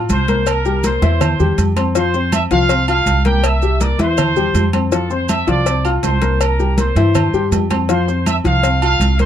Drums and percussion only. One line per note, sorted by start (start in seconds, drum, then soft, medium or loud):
0.09 cowbell medium
0.09 high conga medium
0.09 low agogo medium
0.09 maracas medium
0.28 cowbell medium
0.28 high conga medium
0.28 maracas soft
0.46 cowbell loud
0.46 high conga soft
0.46 low agogo loud
0.46 claves medium
0.46 maracas medium
0.65 high conga soft
0.65 maracas soft
0.84 cowbell medium
0.84 high conga loud
0.84 low agogo medium
0.84 maracas medium
1.02 cowbell medium
1.02 high conga loud
1.02 low agogo medium
1.02 maracas soft
1.21 cowbell loud
1.21 high conga soft
1.21 low conga medium
1.21 low agogo loud
1.21 claves medium
1.21 maracas medium
1.40 high conga soft
1.40 low conga medium
1.40 maracas soft
1.58 cowbell medium
1.58 high conga medium
1.58 low agogo medium
1.58 maracas medium
1.77 cowbell medium
1.77 high conga medium
1.77 low agogo loud
1.77 claves medium
1.77 maracas soft
1.95 cowbell loud
1.95 high conga soft
1.95 maracas medium
2.14 high conga soft
2.14 maracas soft
2.32 cowbell medium
2.32 high conga loud
2.32 low agogo loud
2.32 claves medium
2.32 maracas medium
2.51 cowbell medium
2.51 high conga soft
2.51 maracas soft
2.69 cowbell loud
2.69 high conga soft
2.69 low agogo medium
2.69 maracas medium
2.88 high conga soft
2.88 low agogo loud
2.88 claves medium
2.88 maracas soft
3.06 cowbell medium
3.06 high conga medium
3.06 low agogo medium
3.06 maracas medium
3.25 cowbell medium
3.25 high conga medium
3.25 maracas soft
3.44 cowbell loud
3.44 high conga soft
3.44 low agogo loud
3.44 claves medium
3.44 maracas medium
3.62 high conga soft
3.62 maracas soft
3.81 cowbell medium
3.81 high conga loud
3.81 low agogo medium
3.81 maracas medium
3.99 cowbell medium
3.99 high conga loud
3.99 low agogo medium
3.99 maracas soft
4.18 cowbell loud
4.18 high conga soft
4.18 low conga medium
4.18 low agogo loud
4.18 claves medium
4.18 maracas medium
4.36 high conga soft
4.36 low conga medium
4.36 maracas soft
4.55 cowbell medium
4.55 high conga medium
4.55 low timbale medium
4.55 low agogo medium
4.55 maracas medium
4.73 cowbell medium
4.73 high conga medium
4.73 low agogo loud
4.73 claves medium
4.73 maracas soft
4.92 cowbell loud
4.92 maracas medium
5.10 high conga soft
5.10 maracas soft
5.29 cowbell medium
5.29 high conga loud
5.29 low agogo loud
5.29 claves medium
5.29 maracas medium
5.48 cowbell medium
5.48 high conga soft
5.48 maracas soft
5.66 cowbell loud
5.66 high conga soft
5.66 low agogo medium
5.66 maracas medium
5.85 high conga soft
5.85 low agogo loud
5.85 claves medium
5.85 maracas soft
6.03 cowbell medium
6.03 high conga medium
6.03 low timbale medium
6.03 low agogo medium
6.03 maracas medium
6.22 cowbell medium
6.22 high conga medium
6.22 maracas soft
6.41 cowbell loud
6.41 high conga soft
6.41 low agogo loud
6.41 claves medium
6.41 maracas medium
6.59 high conga soft
6.59 maracas soft
6.78 cowbell medium
6.78 high conga loud
6.78 low agogo medium
6.78 maracas medium
6.96 cowbell medium
6.96 high conga loud
6.96 low agogo medium
6.96 maracas soft
7.15 cowbell loud
7.15 high conga soft
7.15 low conga medium
7.15 low agogo loud
7.15 claves medium
7.15 maracas medium
7.34 high conga soft
7.34 maracas soft
7.52 cowbell medium
7.52 high conga medium
7.52 low timbale medium
7.52 low agogo medium
7.52 maracas medium
7.71 cowbell medium
7.71 high conga medium
7.71 low agogo loud
7.71 claves medium
7.71 maracas soft
7.89 cowbell loud
7.89 high conga soft
7.89 maracas medium
8.08 high conga soft
8.08 maracas soft
8.26 cowbell medium
8.26 high conga loud
8.26 low agogo loud
8.26 claves medium
8.26 maracas medium
8.45 cowbell medium
8.45 high conga soft
8.45 maracas soft
8.63 cowbell loud
8.63 high conga soft
8.63 low agogo medium
8.63 maracas medium
8.82 high conga soft
8.82 low agogo loud
8.82 claves medium
8.82 maracas soft
9.01 cowbell medium
9.01 high conga medium
9.01 low agogo medium
9.01 maracas medium
9.19 cowbell medium
9.19 high conga medium
9.19 maracas soft